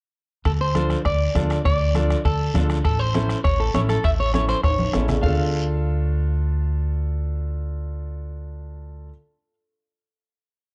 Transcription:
0.45 upright bass D2, clean electric guitar A4, bombo low, bombo rim, high conga, high timbale, long guiro
0.61 clean electric guitar C5
0.75 upright piano D4 F4 A4, bombo rim, high conga, high timbale, short guiro
0.90 bombo rim, high timbale, short guiro
1.05 upright bass D2, clean electric guitar D5, bombo low, bombo rim, high conga, high timbale, long guiro
1.35 upright bass D2, upright piano D4 F4 A4, bombo low, bombo rim, high conga, high timbale, low timbale, short guiro
1.50 bombo rim, high timbale, short guiro
1.65 upright bass D2, clean electric guitar D5, bombo low, bombo rim, high conga, high timbale, long guiro
1.95 upright piano D4 F4 A4, bombo rim, high conga, high timbale, short guiro
2.10 bombo rim, high timbale, short guiro
2.25 upright bass D2, clean electric guitar A4, bombo low, bombo rim, high conga, high timbale, long guiro
2.54 upright bass D2, upright piano D4 F4 A4, bombo low, bombo rim, high conga, high timbale, low timbale, short guiro
2.70 bombo rim, high timbale, short guiro
2.84 upright bass A1, clean electric guitar A4, bombo low, bombo rim, high conga, high timbale, long guiro
2.99 clean electric guitar C5
3.14 upright piano C#4 E4 A4, bombo rim, high conga, high timbale, short guiro
3.29 bombo rim, high timbale, short guiro
3.44 upright bass A1, clean electric guitar C#5, bombo low, bombo rim, high conga, high timbale, long guiro
3.60 clean electric guitar A4
3.74 upright bass A1, upright piano C#4 E4 A4, clean electric guitar C#5, bombo rim, high conga, high timbale, short guiro
3.89 clean electric guitar A4, bombo rim, high timbale, short guiro
4.04 upright bass A1, clean electric guitar E5, bombo low, bombo rim, high timbale, long guiro
4.20 clean electric guitar C#5
4.34 upright piano C#4 E4 A4, clean electric guitar C#5, bombo rim, high conga, high timbale, short guiro
4.49 clean electric guitar C5, bombo rim, high timbale, short guiro
4.63 upright bass A1, clean electric guitar C#5, bombo low, bombo rim, high conga, high timbale, long guiro
4.79 high conga, high timbale
4.93 upright bass A1, upright piano C#4 E4 A4, bombo rim, low timbale, short guiro
5.08 bombo rim, low conga, low timbale, short guiro
5.22 upright bass D2, upright piano D4 F4 A4, clean electric guitar F5, bombo low, low conga, low timbale, long guiro

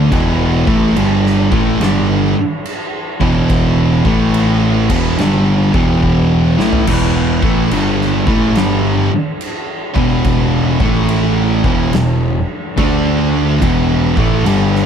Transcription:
Already playing: distorted electric guitar D3 A3 D4
0.10 picked electric bass E1, distorted electric guitar E2 B2 E3, kick, crash
0.66 picked electric bass A1, distorted electric guitar A2 E3 A3, kick
0.96 picked electric bass G1, distorted electric guitar G2 D3 G3, crash
1.26 snare
1.51 picked electric bass A1, distorted electric guitar A2 E3 A3, kick
1.80 picked electric bass G1, distorted electric guitar G2 D3 G3, snare, crash
2.65 crash
3.20 picked electric bass E1, distorted electric guitar E2 B2 E3, kick
3.50 kick, crash
4.05 picked electric bass A1, distorted electric guitar A2 E3 A3, kick
4.34 crash
4.89 picked electric bass E1, distorted electric guitar E2 B2 E3, kick, crash
5.18 picked electric bass G1, distorted electric guitar G2 D3 G3, snare, crash
5.74 picked electric bass E1, distorted electric guitar E2 B2 E3, kick
6.03 kick
6.58 picked electric bass A1, distorted electric guitar A2 E3 A3, snare
6.73 floor tom
6.87 picked electric bass E1, distorted electric guitar E2 B2 E3, kick, crash
7.42 picked electric bass A1, distorted electric guitar A2 E3 A3, kick
7.71 picked electric bass G1, distorted electric guitar G2 D3 G3, crash
8.01 snare
8.27 picked electric bass A1, distorted electric guitar A2 E3 A3, kick
8.55 picked electric bass G1, distorted electric guitar G2 D3 G3, snare, crash
9.41 crash
9.96 picked electric bass E1, distorted electric guitar E2 B2 E3, kick
10.24 kick, crash
10.80 picked electric bass A1, distorted electric guitar A2 E3 A3, kick
11.09 crash
11.64 picked electric bass E1, distorted electric guitar E2 B2 E3, kick
11.92 picked electric bass E1, distorted electric guitar E2 B2, snare, crash
12.77 picked electric bass D2, distorted electric guitar D3 A3 D4, kick, crash
13.60 picked electric bass E1, distorted electric guitar E2 B2 E3, kick, crash
14.16 picked electric bass A1, distorted electric guitar A2 E3 A3, kick
14.45 picked electric bass G1, distorted electric guitar G2 D3 G3, crash
14.75 snare

